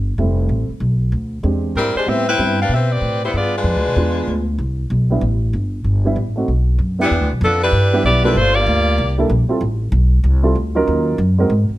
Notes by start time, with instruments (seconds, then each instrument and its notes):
Already playing: upright bass G1
0.18 upright bass F1, grand piano G3 A3 C4 E4
0.49 upright bass A1
0.69 muted upright bass stroke
0.80 upright bass B1
1.12 upright bass D2
1.43 upright bass E2, grand piano G#3 C4 D4 G4
1.75 upright bass G#2, saxophone section G3 C4 E4 A#4
1.95 saxophone section G#3 D4 G4 C5, muted upright bass stroke
2.06 upright bass A2, grand piano G3 B3 C4 E4, saxophone section C4 G4 B4 E5
2.29 saxophone section E4 B4 C5 G5
2.38 upright bass G2, grand piano G3 B3 C4 E4
2.62 saxophone section D4 G4 B4 F5
2.69 upright bass B2
2.74 saxophone section C4 G4 B4 E5
2.92 saxophone section C4 G4 B4 D5
3.01 upright bass A2
3.24 saxophone section G3 B3 E4 C5
3.33 upright bass G2, saxophone section B3 G#4
3.37 saxophone section F4 D5
3.57 saxophone section G#3 D4 F4 B4
3.64 upright bass F2
3.75 upright bass D2
3.86 upright bass B1
3.96 upright bass E2, grand piano G#3 B3 D4 F4
4.27 upright bass D2
4.58 upright bass C2
4.90 upright bass B1
5.10 grand piano G3 B3 D4 E4
5.21 upright bass A1
5.53 upright bass G1
5.84 upright bass G1
6.05 grand piano G3 B3 D4 E4
6.16 upright bass A1
6.36 grand piano A3 C4 D#4 F#4
6.48 upright bass B1
6.78 upright bass F#2
6.99 saxophone section E3 B3 D4 G4, grand piano B3 D4 E4 G4
7.11 upright bass E2
7.21 upright bass D2
7.31 upright bass B1
7.41 upright bass F2, saxophone section F3 B3 D4 A4
7.63 saxophone section G3 D4 E4 B4
7.72 upright bass G2
7.93 grand piano G3 B3 D4 E4 G4
8.04 upright bass B1, saxophone section B3 E4 G4 D5
8.24 grand piano G3 A#3 D4 F4 A4, saxophone section G3 D4 E4 B4
8.35 upright bass G1, saxophone section A3 D4 F4 C5
8.55 saxophone section A#3 F4 G4 D5
8.66 upright bass D2
8.98 upright bass C2
9.18 grand piano G3 A#3 D4 E4 A4
9.30 upright bass A#1
9.49 grand piano G3 C4 E4 F4 A4, muted upright bass stroke
9.61 upright bass A1
9.92 upright bass B1
10.24 upright bass C2
10.43 grand piano G3 C4 E4 F4 A4
10.56 upright bass D2
10.75 grand piano F#3 C#4 D#4 F4 A#4
10.88 upright bass D#2
11.18 upright bass F#2
11.38 grand piano G#3 C4 D#4 F#4 A#4
11.50 upright bass G#2
11.69 muted upright bass stroke